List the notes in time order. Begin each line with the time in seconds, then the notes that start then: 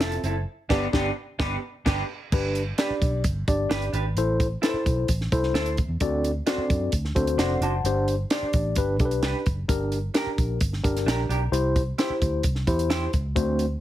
Already playing: F1 C4 F4 A4 E5
0.00 C4 E4 A4, snare, closed hi-hat
0.12 closed hi-hat
0.23 F#1 C4 E4 A4, closed hi-hat
0.69 G1 B3 D4 G4 B4 D5, kick, snare, crash
0.93 G1 B3 D4 G4 B4 D5, kick, snare
1.39 G1 B3 D4 G4 B4, kick, snare
1.86 G1 B3 D4 G4 B4, kick, snare, crash
2.32 G1 D4 G4 B4, kick, crash
2.55 closed hi-hat
2.78 D4 G4 B4 D5, snare, closed hi-hat
2.90 muted fingered electric bass stroke
3.01 B1, kick, closed hi-hat
3.24 G1, kick, closed hi-hat
3.47 G1 D4 G4 D5, kick, closed hi-hat
3.70 G1 D4 G4 B4, snare, closed hi-hat
3.82 closed hi-hat
3.93 G#1 D4 G4 B4, closed hi-hat
4.15 A1 E4 A4 C5, closed hi-hat
4.40 kick, closed hi-hat
4.62 E4 A4 B4 C5, snare, closed hi-hat
4.69 C5
4.73 muted fingered electric bass stroke
4.86 B1, kick, closed hi-hat
5.08 A1, kick, closed hi-hat
5.21 snare
5.32 C2 E4 A4 C5, kick, closed hi-hat
5.43 snare
5.53 D2 E4 A4 C5, snare, closed hi-hat
5.66 closed hi-hat
5.77 kick, closed hi-hat
5.88 E2
6.00 D2 C4 D4 F#4 A4 D5, kick, closed hi-hat
6.24 closed hi-hat
6.46 C4 D4 F#4 A4 C5 D5, snare, closed hi-hat
6.58 muted fingered electric bass stroke
6.70 F#2, kick, closed hi-hat
6.92 D2, kick, closed hi-hat
7.05 snare
7.15 D2 C4 D4 F#4 A4 C5, kick, closed hi-hat
7.27 closed hi-hat
7.37 F1 D4 F#4 C5 D5 F#5, snare, closed hi-hat
7.61 F#1 D4 F#4 C5 F#5 A5, closed hi-hat
7.84 G1 D4 G4 C5, closed hi-hat
8.08 closed hi-hat
8.30 D4 G4 C5 D5, snare, closed hi-hat
8.42 muted fingered electric bass stroke
8.53 A1, kick, closed hi-hat
8.75 G1 D4 G4 B4, kick, closed hi-hat
8.99 B1 D4 G4 A4, kick, closed hi-hat
9.05 B4
9.11 closed hi-hat
9.22 C2 D4 G4 B4, snare, closed hi-hat
9.46 F#1, kick, closed hi-hat
9.69 G1 D4 G4 A#4, kick, closed hi-hat
9.92 closed hi-hat
10.14 D4 G4 A#4, snare, closed hi-hat
10.26 muted fingered electric bass stroke
10.38 A#1, kick, closed hi-hat
10.60 G1, kick, closed hi-hat
10.73 snare
10.84 G1 D4 G4 A#4, kick, closed hi-hat
10.96 snare, closed hi-hat
11.06 A#1 D4 G4 A#4, snare, closed hi-hat
11.29 B1 D4 G4 A#4, closed hi-hat
11.52 C2 E4 G4 C5, closed hi-hat
11.76 kick, closed hi-hat
11.98 E4 G4 C5, snare, closed hi-hat
12.10 muted fingered electric bass stroke
12.21 D2, kick, closed hi-hat
12.43 C2, kick, closed hi-hat
12.55 snare
12.67 E2 E4 G4 C5, kick, closed hi-hat
12.79 closed hi-hat
12.90 E4 G4 C5, snare, closed hi-hat
13.13 C#2, kick, closed hi-hat
13.36 D2 A3 C4 D4 F#4 C5, kick, closed hi-hat
13.59 closed hi-hat